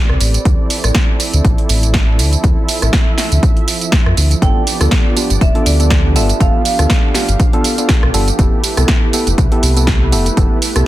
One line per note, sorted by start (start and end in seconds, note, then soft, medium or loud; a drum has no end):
0.00 4.38 C4 medium
0.00 0.41 G4 medium
0.00 0.41 A4 medium
0.00 0.41 B4 medium
0.00 2.40 D5 medium
0.09 0.17 C2 medium
0.09 cross-stick medium
0.21 0.38 A1 loud
0.21 open hi-hat loud
0.21 tambourine medium
0.34 closed hi-hat medium
0.34 tambourine soft
0.45 0.54 D2 loud
0.45 10.87 F3 medium
0.45 4.38 E4 medium
0.45 4.38 A4 medium
0.45 kick loud
0.45 closed hi-hat medium
0.45 tambourine soft
0.70 open hi-hat loud
0.70 tambourine medium
0.84 0.91 A1 medium
0.84 cross-stick medium
0.84 closed hi-hat medium
0.84 tambourine soft
0.95 kick loud
0.95 snare loud
0.95 closed hi-hat medium
0.95 tambourine soft
1.20 open hi-hat medium
1.20 tambourine medium
1.34 1.41 D2 medium
1.34 closed hi-hat soft
1.34 tambourine soft
1.45 1.54 A1 medium
1.45 kick loud
1.45 closed hi-hat medium
1.45 tambourine soft
1.58 closed hi-hat soft
1.69 2.20 A1 medium
1.69 open hi-hat loud
1.69 tambourine medium
1.83 closed hi-hat soft
1.83 tambourine soft
1.94 kick loud
1.94 snare loud
1.94 closed hi-hat medium
1.94 tambourine soft
2.19 2.36 D2 loud
2.19 open hi-hat loud
2.19 tambourine medium
2.33 closed hi-hat soft
2.33 tambourine soft
2.44 2.53 D2 loud
2.44 4.40 E5 loud
2.44 kick loud
2.44 closed hi-hat medium
2.44 tambourine soft
2.69 open hi-hat loud
2.69 tambourine medium
2.82 2.90 A1 medium
2.82 cross-stick medium
2.82 closed hi-hat medium
2.82 tambourine soft
2.93 kick loud
2.93 snare loud
2.93 closed hi-hat medium
2.93 tambourine soft
3.18 snare medium
3.18 open hi-hat medium
3.18 tambourine medium
3.32 3.39 D2 medium
3.32 closed hi-hat soft
3.32 tambourine soft
3.43 kick loud
3.43 closed hi-hat medium
3.43 tambourine soft
3.57 closed hi-hat soft
3.68 open hi-hat loud
3.68 tambourine medium
3.81 closed hi-hat soft
3.81 tambourine soft
3.92 kick loud
3.92 snare loud
3.92 closed hi-hat medium
3.92 tambourine soft
4.06 4.14 F2 medium
4.06 cross-stick medium
4.17 4.35 D2 loud
4.17 open hi-hat loud
4.17 tambourine medium
4.31 closed hi-hat soft
4.31 tambourine soft
4.42 4.51 G1 loud
4.42 4.62 B3 medium
4.42 8.35 B3 medium
4.42 4.62 D4 medium
4.42 8.35 D4 medium
4.42 4.62 F4 medium
4.42 10.87 G4 medium
4.42 4.62 A4 loud
4.42 6.38 D5 loud
4.42 5.44 G5 loud
4.42 kick loud
4.42 closed hi-hat medium
4.42 tambourine soft
4.67 open hi-hat loud
4.67 tambourine medium
4.80 4.88 D2 medium
4.80 5.14 B3 medium
4.80 5.14 D4 medium
4.80 5.14 F4 medium
4.80 5.14 A4 medium
4.80 cross-stick medium
4.80 closed hi-hat soft
4.80 tambourine soft
4.91 kick loud
4.91 snare loud
4.91 closed hi-hat medium
4.91 tambourine soft
5.16 5.30 B3 medium
5.16 5.30 D4 medium
5.16 5.30 F4 medium
5.16 5.30 G4 medium
5.16 open hi-hat medium
5.16 tambourine medium
5.30 5.38 G1 medium
5.30 closed hi-hat soft
5.30 tambourine soft
5.41 5.50 D1 medium
5.41 5.67 E5 loud
5.41 kick loud
5.41 closed hi-hat medium
5.41 tambourine soft
5.55 5.76 B3 medium
5.55 5.76 D4 medium
5.55 5.77 F4 medium
5.55 5.77 A4 loud
5.55 closed hi-hat soft
5.66 6.17 D2 medium
5.66 6.17 D5 medium
5.66 open hi-hat loud
5.66 tambourine medium
5.80 6.13 B3 medium
5.80 6.13 D4 medium
5.80 6.13 F4 medium
5.80 6.13 A4 medium
5.80 closed hi-hat medium
5.80 tambourine soft
5.90 kick loud
5.90 snare loud
5.90 closed hi-hat medium
5.90 tambourine soft
6.15 6.33 G1 loud
6.15 6.29 B3 medium
6.15 6.29 D4 medium
6.15 6.29 F4 medium
6.15 6.29 A4 loud
6.15 6.41 E5 medium
6.15 open hi-hat medium
6.15 tambourine medium
6.29 closed hi-hat soft
6.29 tambourine soft
6.40 6.50 G1 loud
6.40 6.61 B3 medium
6.40 6.61 D4 medium
6.40 6.61 F4 medium
6.40 6.61 A4 loud
6.40 6.64 F5 loud
6.40 8.37 F5 loud
6.40 kick loud
6.40 closed hi-hat medium
6.40 tambourine soft
6.65 7.36 F5 medium
6.65 open hi-hat loud
6.65 tambourine medium
6.79 6.86 D2 medium
6.79 7.12 B3 medium
6.79 7.12 D4 medium
6.79 7.12 F4 medium
6.79 7.12 A4 medium
6.79 cross-stick medium
6.79 closed hi-hat medium
6.79 tambourine soft
6.90 kick loud
6.90 snare loud
6.90 closed hi-hat medium
6.90 tambourine soft
7.14 7.28 B3 medium
7.14 7.28 D4 medium
7.14 7.28 F4 medium
7.14 7.29 G4 medium
7.14 snare medium
7.14 open hi-hat medium
7.14 tambourine medium
7.29 7.36 G1 medium
7.29 closed hi-hat soft
7.29 tambourine soft
7.40 kick loud
7.40 closed hi-hat medium
7.40 tambourine soft
7.53 7.75 B3 medium
7.53 7.75 D4 medium
7.53 7.75 F4 medium
7.53 7.75 A4 loud
7.53 closed hi-hat soft
7.64 open hi-hat loud
7.64 tambourine medium
7.78 8.11 B3 medium
7.78 8.11 D4 medium
7.78 8.11 F4 medium
7.78 8.11 A4 medium
7.78 closed hi-hat soft
7.78 tambourine soft
7.89 kick loud
7.89 snare loud
7.89 closed hi-hat medium
7.89 tambourine soft
8.03 8.10 B1 medium
8.03 cross-stick medium
8.14 8.31 G1 loud
8.14 8.28 B3 medium
8.14 8.28 D4 medium
8.14 8.28 F4 medium
8.14 8.28 A4 loud
8.14 open hi-hat medium
8.14 tambourine medium
8.28 closed hi-hat medium
8.28 tambourine soft
8.39 8.48 F1 loud
8.39 10.87 A3 medium
8.39 8.59 B3 medium
8.39 8.59 E4 medium
8.39 10.87 E4 medium
8.39 8.59 G4 medium
8.39 8.59 A4 loud
8.39 10.87 B4 medium
8.39 kick loud
8.39 closed hi-hat medium
8.39 tambourine soft
8.64 open hi-hat loud
8.64 tambourine medium
8.77 8.85 C2 medium
8.77 9.10 B3 medium
8.77 9.11 E4 medium
8.77 9.11 G4 medium
8.77 9.11 A4 medium
8.77 cross-stick medium
8.77 closed hi-hat medium
8.77 tambourine soft
8.88 kick loud
8.88 snare loud
8.88 closed hi-hat medium
8.88 tambourine soft
9.13 9.27 B3 medium
9.13 9.27 E4 medium
9.13 9.27 G4 medium
9.13 9.27 A4 medium
9.13 open hi-hat medium
9.13 tambourine medium
9.27 9.34 F1 medium
9.27 closed hi-hat medium
9.27 tambourine soft
9.38 9.47 C2 medium
9.38 kick loud
9.38 closed hi-hat medium
9.38 tambourine soft
9.52 9.73 B3 medium
9.52 9.73 E4 medium
9.52 9.73 G4 medium
9.52 9.73 A4 loud
9.52 closed hi-hat soft
9.63 10.14 C2 medium
9.63 open hi-hat loud
9.63 tambourine medium
9.76 10.10 B3 medium
9.76 10.10 E4 medium
9.76 10.10 G4 medium
9.76 10.10 A4 medium
9.76 closed hi-hat medium
9.76 tambourine soft
9.87 kick loud
9.87 snare loud
9.87 closed hi-hat medium
9.87 tambourine soft
10.12 10.30 F1 loud
10.12 10.26 B3 medium
10.12 10.26 E4 medium
10.12 10.26 G4 medium
10.12 10.26 A4 loud
10.12 open hi-hat medium
10.12 tambourine medium
10.26 closed hi-hat medium
10.26 tambourine soft
10.37 10.46 F1 loud
10.37 10.57 B3 medium
10.37 10.57 E4 medium
10.37 10.57 G4 medium
10.37 10.58 A4 loud
10.37 kick loud
10.37 closed hi-hat medium
10.37 tambourine soft
10.62 open hi-hat loud
10.62 tambourine medium
10.76 10.83 C2 medium
10.76 10.87 B3 medium
10.76 10.87 E4 medium
10.76 10.87 G4 medium
10.76 10.87 A4 medium
10.76 cross-stick medium
10.76 closed hi-hat medium
10.76 tambourine soft